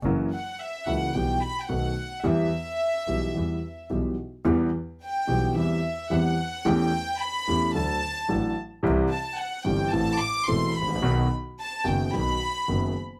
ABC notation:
X:1
M:4/4
L:1/16
Q:1/4=109
K:Em
V:1 name="Violin section"
z2 f2 e2 f2 g2 b3/2 g/2 f4 | e12 z4 | z4 g4 e4 f4 | g4 b4 a6 z2 |
z2 a2 f2 g2 a2 d'2 c'2 b2- | b2 z2 a2 g2 b6 z2 |]
V:2 name="Grand piano" clef=bass
[F,,E,F,^A,^CF]2 z4 [^C,,^C,E,A,CF]2 [B,,,B,,E,G,B,G]2 z2 [B,,,B,,^D,=A,B,F]2 z2 | [E,,E,G,B,G]2 z4 [B,,,B,,E,G,B,G]2 [E,,E,G,B,G]2 z2 [B,,,B,,E,G,B,G]2 z2 | [E,,E,G,B,G]2 z4 [B,,,B,,E,G,B,G]2 [E,,E,G,CG]2 z2 [E,,E,G,CG]2 z2 | [E,,E,A,^CG]2 z4 [E,,E,A,CG]2 [D,,D,F,A,DA]2 z2 [A,,,A,,F,A,DA]2 z2 |
[C,,C,E,G,CG]2 z4 [G,,,G,,E,G,CG]2 [A,,,A,,E,A,CA]2 z2 [E,,,E,,E,A,CA]2 z/2 ^G,,,/2 A,,,/2 ^A,,,/2 | [B,,,B,,^D,F,B,F]2 z4 [F,,,F,,D,F,B,F]2 [B,,,B,,D,F,B,F]2 z2 [F,,,F,,D,F,B,F]2 z2 |]
V:3 name="Double bass" clef=bass
F,,,2 z4 ^C,,2 B,,,2 z2 B,,,2 z2 | E,,2 z4 B,,,2 E,,2 z2 B,,,2 z2 | E,,2 z4 B,,,2 E,,2 z2 E,,2 z2 | E,,2 z4 E,,2 D,,2 z2 A,,,2 z2 |
C,,2 z4 G,,,2 A,,,2 z2 E,,,2 A,,,2 | B,,,2 z4 F,,,2 B,,,2 z2 F,,,2 z2 |]